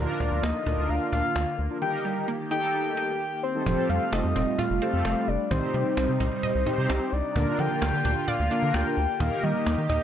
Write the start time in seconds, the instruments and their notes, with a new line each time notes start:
Already playing: analog synth pad D3 A#3 F4, analog polysynth D4 F4 A#4
0.20 analog synth bass D2, synth arpeggio sound F3, soft synth lead D5, cajon bass
0.32 analog synth bass D2, cajon slap
0.43 analog synth bass D2, synth arpeggio sound A#3, soft synth lead D#5, cajon slap
0.66 analog synth bass D2, synth arpeggio sound D4, analog polysynth D4 F4 A#4, cajon bass
0.78 analog synth bass D2, cajon slap
0.89 analog synth bass D2, soft synth lead F5, cajon slap
1.13 analog synth bass D2, synth arpeggio sound D4, soft synth lead F5, cajon bass
1.24 cajon slap
1.36 analog synth bass D2, cajon slap
1.59 analog synth bass D2, cajon slap
1.70 analog polysynth D4 F4 A#4, cajon slap
1.82 analog synth pad D#3 G4, synth arpeggio sound D#3, analog polysynth D#4 G4 A#4, soft synth lead G5
2.05 synth arpeggio sound G3
2.28 synth arpeggio sound A#3
2.51 analog polysynth D#4 G4 A4, synth arpeggio sound D#4, soft synth lead G5
2.97 synth arpeggio sound D#4
3.43 soft synth lead C5
3.55 analog polysynth D#4 G4 A4
3.66 analog synth bass F1, synth arpeggio sound F3, analog synth pad G3 A3 F4, analog polysynth C4 G4 A4, cajon bass
3.89 analog synth bass F2, synth arpeggio sound G3, soft synth lead F5, cajon slap
4.13 analog synth bass F1, synth arpeggio sound A3, soft synth lead D#5, cajon slap
4.24 analog synth bass F2
4.36 analog synth bass F1, synth arpeggio sound C4, cajon bass
4.59 synth arpeggio sound F4, soft synth lead F5, cajon bass
4.70 analog synth bass F1
4.82 analog polysynth C4 F4 G4 A4, synth arpeggio sound C4, cajon slap
4.93 analog synth bass F2
5.05 analog synth bass F1, synth arpeggio sound A3, cajon slap
5.28 analog synth bass F1, soft synth lead D5
5.51 analog synth bass C2, analog synth pad C3 D#4, synth arpeggio sound D#3, analog polysynth C4 D#4 G4 C5, soft synth lead C5, cajon bass
5.74 analog synth bass C3, synth arpeggio sound G3, soft synth lead C5, cajon slap
5.97 analog synth bass C2, synth arpeggio sound C4, cajon slap
6.09 analog synth bass C3
6.20 analog synth bass C2, synth arpeggio sound D#4, cajon bass
6.43 synth arpeggio sound D#5, cajon bass
6.55 analog synth bass C2
6.66 analog polysynth C4 D#4 G4 C5, synth arpeggio sound D#4, cajon bass
6.78 analog synth bass C3
6.90 analog synth bass C2, synth arpeggio sound C4, cajon slap
7.12 analog synth bass C2, soft synth lead D5
7.36 analog synth bass D2, analog synth pad D3 A#3 F4, synth arpeggio sound D3, analog polysynth A#3 D4 F4 A#4, cajon bass
7.59 analog synth bass D3, synth arpeggio sound F3, soft synth lead G5, cajon slap
7.82 analog synth bass D2, synth arpeggio sound A#3, cajon slap
7.93 analog synth bass D3
8.05 analog synth bass D2, synth arpeggio sound D4, cajon bass
8.28 synth arpeggio sound D5, soft synth lead F5, cajon bass
8.40 analog synth bass D2
8.51 analog polysynth A#3 D4 F4 A#4, synth arpeggio sound D4, cajon slap
8.63 analog synth bass D3
8.74 analog synth bass D2, synth arpeggio sound A#3, soft synth lead G5, cajon slap
8.97 analog synth bass D2
9.20 analog synth bass D#2, synth arpeggio sound D#3, analog synth pad D#3 G4, analog polysynth A#3 D#4 G4 A#4, soft synth lead F5, cajon bass
9.43 analog synth bass D#3, synth arpeggio sound G3, soft synth lead D#5, cajon slap
9.66 analog synth bass D#2, synth arpeggio sound A#3, cajon slap
9.78 analog synth bass D#3
9.89 analog synth bass D#2, synth arpeggio sound D#4, soft synth lead D#5, cajon bass